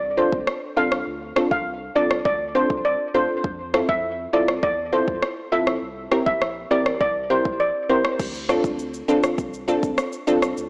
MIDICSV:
0, 0, Header, 1, 5, 480
1, 0, Start_track
1, 0, Tempo, 594059
1, 862, Time_signature, 4, 2, 24, 8
1, 8640, End_track
2, 0, Start_track
2, 0, Title_t, "Steel pan"
2, 0, Program_c, 0, 114
2, 143, Note_on_c, 0, 72, 69
2, 229, Note_off_c, 0, 72, 0
2, 623, Note_on_c, 0, 77, 75
2, 709, Note_off_c, 0, 77, 0
2, 1222, Note_on_c, 0, 77, 75
2, 1309, Note_off_c, 0, 77, 0
2, 1583, Note_on_c, 0, 74, 81
2, 1669, Note_off_c, 0, 74, 0
2, 1822, Note_on_c, 0, 74, 83
2, 1908, Note_off_c, 0, 74, 0
2, 2061, Note_on_c, 0, 72, 78
2, 2148, Note_off_c, 0, 72, 0
2, 2302, Note_on_c, 0, 74, 78
2, 2389, Note_off_c, 0, 74, 0
2, 2542, Note_on_c, 0, 72, 81
2, 2628, Note_off_c, 0, 72, 0
2, 3141, Note_on_c, 0, 76, 80
2, 3228, Note_off_c, 0, 76, 0
2, 3502, Note_on_c, 0, 74, 77
2, 3588, Note_off_c, 0, 74, 0
2, 3742, Note_on_c, 0, 74, 83
2, 3829, Note_off_c, 0, 74, 0
2, 3981, Note_on_c, 0, 72, 68
2, 4068, Note_off_c, 0, 72, 0
2, 4462, Note_on_c, 0, 76, 73
2, 4548, Note_off_c, 0, 76, 0
2, 5061, Note_on_c, 0, 76, 79
2, 5148, Note_off_c, 0, 76, 0
2, 5422, Note_on_c, 0, 74, 83
2, 5508, Note_off_c, 0, 74, 0
2, 5662, Note_on_c, 0, 74, 84
2, 5748, Note_off_c, 0, 74, 0
2, 5900, Note_on_c, 0, 72, 78
2, 5987, Note_off_c, 0, 72, 0
2, 6140, Note_on_c, 0, 74, 78
2, 6227, Note_off_c, 0, 74, 0
2, 6379, Note_on_c, 0, 72, 78
2, 6467, Note_off_c, 0, 72, 0
2, 8640, End_track
3, 0, Start_track
3, 0, Title_t, "Synth pluck"
3, 0, Program_c, 1, 84
3, 139, Note_on_c, 1, 60, 77
3, 140, Note_on_c, 1, 62, 70
3, 142, Note_on_c, 1, 65, 71
3, 144, Note_on_c, 1, 69, 83
3, 236, Note_off_c, 1, 60, 0
3, 237, Note_off_c, 1, 62, 0
3, 238, Note_off_c, 1, 65, 0
3, 239, Note_off_c, 1, 69, 0
3, 618, Note_on_c, 1, 60, 80
3, 620, Note_on_c, 1, 62, 71
3, 622, Note_on_c, 1, 65, 68
3, 623, Note_on_c, 1, 69, 81
3, 716, Note_off_c, 1, 60, 0
3, 717, Note_off_c, 1, 62, 0
3, 718, Note_off_c, 1, 65, 0
3, 719, Note_off_c, 1, 69, 0
3, 1099, Note_on_c, 1, 60, 77
3, 1100, Note_on_c, 1, 62, 68
3, 1102, Note_on_c, 1, 65, 71
3, 1103, Note_on_c, 1, 69, 84
3, 1196, Note_off_c, 1, 60, 0
3, 1197, Note_off_c, 1, 62, 0
3, 1198, Note_off_c, 1, 65, 0
3, 1199, Note_off_c, 1, 69, 0
3, 1579, Note_on_c, 1, 60, 76
3, 1580, Note_on_c, 1, 62, 69
3, 1581, Note_on_c, 1, 65, 72
3, 1583, Note_on_c, 1, 69, 84
3, 1676, Note_off_c, 1, 60, 0
3, 1677, Note_off_c, 1, 62, 0
3, 1678, Note_off_c, 1, 65, 0
3, 1679, Note_off_c, 1, 69, 0
3, 2059, Note_on_c, 1, 60, 74
3, 2061, Note_on_c, 1, 62, 71
3, 2063, Note_on_c, 1, 65, 68
3, 2064, Note_on_c, 1, 69, 85
3, 2157, Note_off_c, 1, 60, 0
3, 2157, Note_off_c, 1, 62, 0
3, 2158, Note_off_c, 1, 65, 0
3, 2159, Note_off_c, 1, 69, 0
3, 2539, Note_on_c, 1, 60, 73
3, 2541, Note_on_c, 1, 62, 68
3, 2542, Note_on_c, 1, 65, 69
3, 2544, Note_on_c, 1, 69, 84
3, 2637, Note_off_c, 1, 60, 0
3, 2637, Note_off_c, 1, 62, 0
3, 2638, Note_off_c, 1, 65, 0
3, 2639, Note_off_c, 1, 69, 0
3, 3019, Note_on_c, 1, 60, 78
3, 3020, Note_on_c, 1, 64, 71
3, 3022, Note_on_c, 1, 65, 70
3, 3024, Note_on_c, 1, 69, 85
3, 3117, Note_off_c, 1, 60, 0
3, 3117, Note_off_c, 1, 64, 0
3, 3118, Note_off_c, 1, 65, 0
3, 3119, Note_off_c, 1, 69, 0
3, 3498, Note_on_c, 1, 60, 78
3, 3500, Note_on_c, 1, 64, 71
3, 3502, Note_on_c, 1, 65, 74
3, 3503, Note_on_c, 1, 69, 82
3, 3596, Note_off_c, 1, 60, 0
3, 3597, Note_off_c, 1, 64, 0
3, 3598, Note_off_c, 1, 65, 0
3, 3599, Note_off_c, 1, 69, 0
3, 3979, Note_on_c, 1, 60, 77
3, 3980, Note_on_c, 1, 64, 68
3, 3982, Note_on_c, 1, 65, 71
3, 3983, Note_on_c, 1, 69, 86
3, 4076, Note_off_c, 1, 60, 0
3, 4077, Note_off_c, 1, 64, 0
3, 4078, Note_off_c, 1, 65, 0
3, 4079, Note_off_c, 1, 69, 0
3, 4459, Note_on_c, 1, 60, 80
3, 4460, Note_on_c, 1, 64, 68
3, 4463, Note_on_c, 1, 65, 72
3, 4464, Note_on_c, 1, 69, 82
3, 4557, Note_off_c, 1, 60, 0
3, 4557, Note_off_c, 1, 64, 0
3, 4558, Note_off_c, 1, 65, 0
3, 4559, Note_off_c, 1, 69, 0
3, 4939, Note_on_c, 1, 60, 80
3, 4941, Note_on_c, 1, 64, 70
3, 4943, Note_on_c, 1, 67, 69
3, 4945, Note_on_c, 1, 70, 85
3, 5037, Note_off_c, 1, 60, 0
3, 5038, Note_off_c, 1, 64, 0
3, 5038, Note_off_c, 1, 67, 0
3, 5039, Note_off_c, 1, 70, 0
3, 5419, Note_on_c, 1, 60, 80
3, 5421, Note_on_c, 1, 64, 70
3, 5422, Note_on_c, 1, 67, 74
3, 5424, Note_on_c, 1, 70, 85
3, 5517, Note_off_c, 1, 60, 0
3, 5517, Note_off_c, 1, 64, 0
3, 5518, Note_off_c, 1, 67, 0
3, 5519, Note_off_c, 1, 70, 0
3, 5898, Note_on_c, 1, 60, 75
3, 5900, Note_on_c, 1, 64, 72
3, 5901, Note_on_c, 1, 67, 67
3, 5903, Note_on_c, 1, 70, 80
3, 5996, Note_off_c, 1, 60, 0
3, 5997, Note_off_c, 1, 64, 0
3, 5998, Note_off_c, 1, 67, 0
3, 5999, Note_off_c, 1, 70, 0
3, 6378, Note_on_c, 1, 60, 78
3, 6380, Note_on_c, 1, 64, 68
3, 6382, Note_on_c, 1, 67, 69
3, 6384, Note_on_c, 1, 70, 83
3, 6476, Note_off_c, 1, 60, 0
3, 6477, Note_off_c, 1, 64, 0
3, 6478, Note_off_c, 1, 67, 0
3, 6479, Note_off_c, 1, 70, 0
3, 6858, Note_on_c, 1, 60, 88
3, 6860, Note_on_c, 1, 62, 88
3, 6861, Note_on_c, 1, 65, 81
3, 6863, Note_on_c, 1, 69, 99
3, 6956, Note_off_c, 1, 60, 0
3, 6957, Note_off_c, 1, 62, 0
3, 6958, Note_off_c, 1, 65, 0
3, 6959, Note_off_c, 1, 69, 0
3, 7338, Note_on_c, 1, 60, 94
3, 7340, Note_on_c, 1, 62, 82
3, 7341, Note_on_c, 1, 65, 87
3, 7343, Note_on_c, 1, 69, 103
3, 7436, Note_off_c, 1, 60, 0
3, 7437, Note_off_c, 1, 62, 0
3, 7438, Note_off_c, 1, 65, 0
3, 7439, Note_off_c, 1, 69, 0
3, 7819, Note_on_c, 1, 60, 91
3, 7821, Note_on_c, 1, 62, 84
3, 7822, Note_on_c, 1, 65, 81
3, 7824, Note_on_c, 1, 69, 101
3, 7916, Note_off_c, 1, 60, 0
3, 7917, Note_off_c, 1, 62, 0
3, 7918, Note_off_c, 1, 65, 0
3, 7919, Note_off_c, 1, 69, 0
3, 8299, Note_on_c, 1, 60, 95
3, 8300, Note_on_c, 1, 62, 87
3, 8302, Note_on_c, 1, 65, 84
3, 8304, Note_on_c, 1, 69, 99
3, 8397, Note_off_c, 1, 60, 0
3, 8397, Note_off_c, 1, 62, 0
3, 8398, Note_off_c, 1, 65, 0
3, 8399, Note_off_c, 1, 69, 0
3, 8640, End_track
4, 0, Start_track
4, 0, Title_t, "Sub bass"
4, 0, Program_c, 2, 38
4, 0, Note_on_c, 2, 36, 96
4, 214, Note_off_c, 2, 36, 0
4, 263, Note_on_c, 2, 38, 85
4, 367, Note_off_c, 2, 38, 0
4, 621, Note_on_c, 2, 36, 97
4, 830, Note_off_c, 2, 36, 0
4, 861, Note_on_c, 2, 38, 109
4, 1070, Note_off_c, 2, 38, 0
4, 1221, Note_on_c, 2, 36, 91
4, 1534, Note_off_c, 2, 36, 0
4, 1581, Note_on_c, 2, 36, 89
4, 1790, Note_off_c, 2, 36, 0
4, 1820, Note_on_c, 2, 38, 105
4, 2133, Note_off_c, 2, 38, 0
4, 2182, Note_on_c, 2, 36, 87
4, 2390, Note_off_c, 2, 36, 0
4, 2541, Note_on_c, 2, 38, 91
4, 2645, Note_off_c, 2, 38, 0
4, 2782, Note_on_c, 2, 41, 108
4, 3094, Note_off_c, 2, 41, 0
4, 3142, Note_on_c, 2, 41, 94
4, 3454, Note_off_c, 2, 41, 0
4, 3501, Note_on_c, 2, 36, 88
4, 3710, Note_off_c, 2, 36, 0
4, 3740, Note_on_c, 2, 40, 100
4, 4053, Note_off_c, 2, 40, 0
4, 4103, Note_on_c, 2, 41, 86
4, 4206, Note_off_c, 2, 41, 0
4, 4461, Note_on_c, 2, 34, 96
4, 4670, Note_off_c, 2, 34, 0
4, 4701, Note_on_c, 2, 36, 106
4, 4910, Note_off_c, 2, 36, 0
4, 5062, Note_on_c, 2, 34, 94
4, 5374, Note_off_c, 2, 34, 0
4, 5422, Note_on_c, 2, 34, 85
4, 5630, Note_off_c, 2, 34, 0
4, 5661, Note_on_c, 2, 36, 99
4, 5974, Note_off_c, 2, 36, 0
4, 6022, Note_on_c, 2, 34, 84
4, 6230, Note_off_c, 2, 34, 0
4, 6381, Note_on_c, 2, 36, 84
4, 6485, Note_off_c, 2, 36, 0
4, 6622, Note_on_c, 2, 38, 107
4, 6934, Note_off_c, 2, 38, 0
4, 6982, Note_on_c, 2, 38, 102
4, 7294, Note_off_c, 2, 38, 0
4, 7341, Note_on_c, 2, 33, 98
4, 7550, Note_off_c, 2, 33, 0
4, 7581, Note_on_c, 2, 36, 94
4, 7894, Note_off_c, 2, 36, 0
4, 7943, Note_on_c, 2, 38, 84
4, 8047, Note_off_c, 2, 38, 0
4, 8302, Note_on_c, 2, 36, 97
4, 8510, Note_off_c, 2, 36, 0
4, 8543, Note_on_c, 2, 38, 103
4, 8640, Note_off_c, 2, 38, 0
4, 8640, End_track
5, 0, Start_track
5, 0, Title_t, "Drums"
5, 263, Note_on_c, 9, 36, 95
5, 343, Note_off_c, 9, 36, 0
5, 382, Note_on_c, 9, 37, 93
5, 463, Note_off_c, 9, 37, 0
5, 741, Note_on_c, 9, 37, 93
5, 822, Note_off_c, 9, 37, 0
5, 1102, Note_on_c, 9, 37, 95
5, 1182, Note_off_c, 9, 37, 0
5, 1222, Note_on_c, 9, 36, 95
5, 1302, Note_off_c, 9, 36, 0
5, 1702, Note_on_c, 9, 37, 88
5, 1783, Note_off_c, 9, 37, 0
5, 1820, Note_on_c, 9, 36, 96
5, 1901, Note_off_c, 9, 36, 0
5, 2182, Note_on_c, 9, 36, 97
5, 2263, Note_off_c, 9, 36, 0
5, 2781, Note_on_c, 9, 36, 110
5, 2862, Note_off_c, 9, 36, 0
5, 3022, Note_on_c, 9, 37, 95
5, 3103, Note_off_c, 9, 37, 0
5, 3142, Note_on_c, 9, 36, 98
5, 3223, Note_off_c, 9, 36, 0
5, 3622, Note_on_c, 9, 37, 87
5, 3703, Note_off_c, 9, 37, 0
5, 3741, Note_on_c, 9, 36, 102
5, 3821, Note_off_c, 9, 36, 0
5, 4102, Note_on_c, 9, 36, 94
5, 4183, Note_off_c, 9, 36, 0
5, 4222, Note_on_c, 9, 37, 89
5, 4302, Note_off_c, 9, 37, 0
5, 4582, Note_on_c, 9, 37, 89
5, 4662, Note_off_c, 9, 37, 0
5, 4942, Note_on_c, 9, 37, 91
5, 5023, Note_off_c, 9, 37, 0
5, 5062, Note_on_c, 9, 36, 97
5, 5143, Note_off_c, 9, 36, 0
5, 5184, Note_on_c, 9, 37, 87
5, 5265, Note_off_c, 9, 37, 0
5, 5543, Note_on_c, 9, 37, 86
5, 5623, Note_off_c, 9, 37, 0
5, 5661, Note_on_c, 9, 36, 94
5, 5741, Note_off_c, 9, 36, 0
5, 6022, Note_on_c, 9, 36, 94
5, 6103, Note_off_c, 9, 36, 0
5, 6501, Note_on_c, 9, 37, 90
5, 6582, Note_off_c, 9, 37, 0
5, 6621, Note_on_c, 9, 36, 113
5, 6621, Note_on_c, 9, 49, 92
5, 6621, Note_on_c, 9, 82, 66
5, 6702, Note_off_c, 9, 36, 0
5, 6702, Note_off_c, 9, 49, 0
5, 6702, Note_off_c, 9, 82, 0
5, 6744, Note_on_c, 9, 82, 52
5, 6824, Note_off_c, 9, 82, 0
5, 6862, Note_on_c, 9, 37, 94
5, 6862, Note_on_c, 9, 82, 55
5, 6943, Note_off_c, 9, 37, 0
5, 6943, Note_off_c, 9, 82, 0
5, 6981, Note_on_c, 9, 82, 71
5, 6982, Note_on_c, 9, 36, 99
5, 7062, Note_off_c, 9, 82, 0
5, 7063, Note_off_c, 9, 36, 0
5, 7102, Note_on_c, 9, 82, 73
5, 7183, Note_off_c, 9, 82, 0
5, 7223, Note_on_c, 9, 82, 58
5, 7304, Note_off_c, 9, 82, 0
5, 7342, Note_on_c, 9, 82, 54
5, 7423, Note_off_c, 9, 82, 0
5, 7461, Note_on_c, 9, 82, 79
5, 7462, Note_on_c, 9, 37, 89
5, 7542, Note_off_c, 9, 82, 0
5, 7543, Note_off_c, 9, 37, 0
5, 7580, Note_on_c, 9, 36, 100
5, 7582, Note_on_c, 9, 82, 74
5, 7661, Note_off_c, 9, 36, 0
5, 7663, Note_off_c, 9, 82, 0
5, 7704, Note_on_c, 9, 82, 56
5, 7785, Note_off_c, 9, 82, 0
5, 7824, Note_on_c, 9, 82, 50
5, 7905, Note_off_c, 9, 82, 0
5, 7943, Note_on_c, 9, 36, 100
5, 7943, Note_on_c, 9, 82, 70
5, 8023, Note_off_c, 9, 36, 0
5, 8023, Note_off_c, 9, 82, 0
5, 8062, Note_on_c, 9, 37, 93
5, 8063, Note_on_c, 9, 82, 74
5, 8143, Note_off_c, 9, 37, 0
5, 8144, Note_off_c, 9, 82, 0
5, 8181, Note_on_c, 9, 82, 56
5, 8262, Note_off_c, 9, 82, 0
5, 8302, Note_on_c, 9, 82, 54
5, 8382, Note_off_c, 9, 82, 0
5, 8423, Note_on_c, 9, 37, 88
5, 8424, Note_on_c, 9, 82, 74
5, 8503, Note_off_c, 9, 37, 0
5, 8505, Note_off_c, 9, 82, 0
5, 8543, Note_on_c, 9, 82, 68
5, 8623, Note_off_c, 9, 82, 0
5, 8640, End_track
0, 0, End_of_file